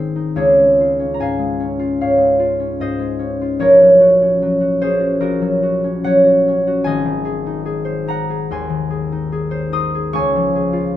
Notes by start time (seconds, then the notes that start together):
Already playing: G#1 G#2 D#3 G#3 C4 D#4 G#4 A#4 C5 D#5
0.16 D#4
0.36 C#2 G#4 C#5
0.58 G#3
0.80 F4
0.99 C#4
1.14 A#5
1.20 G#2 F5 G#5
1.39 G#3
1.60 C#4
1.79 F4
2.01 G#2 C#5 F5
2.17 G#3
2.39 F4
2.59 C#4
2.80 G#2 C5 D#5
2.99 G#3
3.19 C#4
3.41 F4
3.59 A#1 A#4 C#5
3.82 F#3
4.00 F#4
4.22 C#4
4.42 F#3
4.61 F#4
4.82 C#4 G#4 C5
5.00 F#4
5.20 A#1 F#4 A#4
5.41 F#3
5.63 F#4
5.84 C#4
6.04 F#3 C#5 F#5
6.24 F#4
6.48 C#4
6.67 F#4
6.84 G#1 D#5 G#5
7.05 D#3
7.25 G#4
7.46 D#4
7.65 G#4
7.85 C5
8.07 D#4 F#5 A#5
8.30 G#4
8.51 D#2 G#5 C6
8.69 D#3
8.90 G#4
9.12 D#4
9.32 G#4
9.51 C5
9.72 D#4 C6 D#6
9.95 G#4
10.13 C#2 G#5 C#6
10.36 F3
10.55 G#4
10.73 F4